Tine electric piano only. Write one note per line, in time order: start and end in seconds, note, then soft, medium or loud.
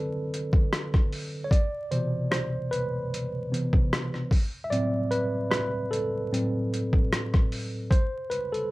0.00 1.52 D3 medium
0.00 1.53 F#3 soft
0.00 1.53 C4 medium
0.00 0.27 A4 medium
0.00 1.53 B4 loud
0.00 1.51 D5 loud
1.44 1.51 C#5 medium
1.51 1.88 D5 loud
1.91 3.08 B2 medium
1.91 3.07 C3 medium
1.91 3.08 E3 soft
1.91 2.28 C5 medium
2.31 2.68 C5 medium
2.71 3.47 B4 medium
3.51 3.87 C3 soft
3.51 3.88 E3 soft
3.51 3.88 B3 soft
4.64 4.71 E5 medium
4.71 5.26 A2 medium
4.71 5.27 F#3 soft
4.71 5.27 C4 medium
4.71 5.12 D5 loud
5.11 5.49 B4 loud
5.50 5.88 B4 medium
5.91 6.67 A4 medium
6.32 6.68 A2 medium
6.32 6.68 F#3 soft
6.32 6.68 C4 medium
7.91 8.32 C5 loud
8.30 8.51 B4 medium
8.52 8.71 A4 medium